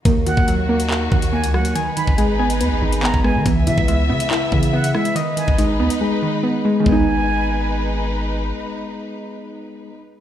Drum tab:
HH |x-x-x--x---x-x-x|x-x-x--xx--x----|x-x-x--x---x-x-x|x-x-x--x--------|
CP |--------x-------|------------x---|--------x-------|----------------|
SD |--------------r-|--------------r-|--------------r-|----------------|
FT |----------------|----------------|----------------|----------------|
BD |o--o------o-----|---o---------o--|o--o------o-----|---o------------|

HH |----------------|----------------|
CP |----------------|----------------|
SD |----------------|----------------|
FT |o---------------|----------------|
BD |o---------------|----------------|